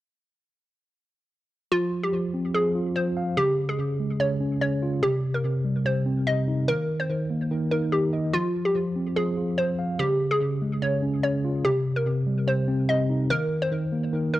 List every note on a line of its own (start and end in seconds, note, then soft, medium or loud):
1.72 2.11 F3 medium
1.72 2.01 F4 loud
2.03 2.51 G4 medium
2.13 2.54 F3 medium
2.34 3.37 C4 medium
2.54 2.95 F3 medium
2.54 2.93 G#4 medium
2.75 3.37 F4 medium
2.96 3.38 F3 medium
2.96 3.35 C5 medium
3.17 3.37 F5 medium
3.37 3.78 C#3 medium
3.37 3.67 G4 loud
3.69 4.17 G#4 medium
3.79 4.19 C#3 medium
4.00 5.03 G#3 medium
4.20 4.60 C#3 medium
4.20 4.59 C#5 medium
4.40 5.03 C#4 medium
4.61 5.03 C#3 medium
4.61 4.77 C#5 medium
4.83 5.03 F4 medium
5.02 5.42 C3 medium
5.02 5.33 G4 loud
5.34 5.82 A#4 medium
5.44 5.84 C3 medium
5.65 6.68 G3 medium
5.85 6.26 C3 medium
5.85 6.25 C5 medium
6.06 6.68 C4 medium
6.27 6.68 C3 medium
6.27 6.66 D#5 medium
6.48 6.68 D#4 medium
6.68 7.08 D#3 medium
6.68 6.98 A#4 loud
7.00 7.48 C5 medium
7.09 7.49 D#3 medium
7.30 8.34 A#3 medium
7.51 7.91 D#3 medium
7.71 8.34 D#4 medium
7.71 7.87 A#4 medium
7.92 8.34 D#3 medium
7.92 8.08 G4 medium
8.13 8.34 D#5 medium
8.33 8.74 F3 medium
8.33 8.63 F4 loud
8.65 9.13 G4 medium
8.75 9.15 F3 medium
8.96 9.99 C4 medium
9.16 9.57 F3 medium
9.16 9.55 G#4 medium
9.37 9.99 F4 medium
9.58 10.00 F3 medium
9.58 9.97 C5 medium
9.79 9.99 F5 medium
9.99 10.40 C#3 medium
9.99 10.29 G4 loud
10.31 10.79 G#4 medium
10.41 10.81 C#3 medium
10.62 11.65 G#3 medium
10.82 11.22 C#3 medium
10.82 11.21 C#5 medium
11.02 11.65 C#4 medium
11.23 11.65 C#3 medium
11.23 11.39 C#5 medium
11.45 11.65 F4 medium
11.64 12.04 C3 medium
11.64 11.95 G4 loud
11.96 12.44 A#4 medium
12.06 12.46 C3 medium
12.27 13.30 G3 medium
12.47 12.88 C3 medium
12.47 12.87 C5 medium
12.68 13.30 C4 medium
12.89 13.30 C3 medium
12.89 13.28 D#5 medium
13.10 13.30 D#4 medium
13.30 13.70 D#3 medium
13.30 13.60 A#4 loud
13.62 14.10 C5 medium
13.71 14.12 D#3 medium
13.92 14.40 A#3 medium
14.13 14.40 D#3 medium
14.34 14.40 D#4 medium
14.34 14.40 A#4 medium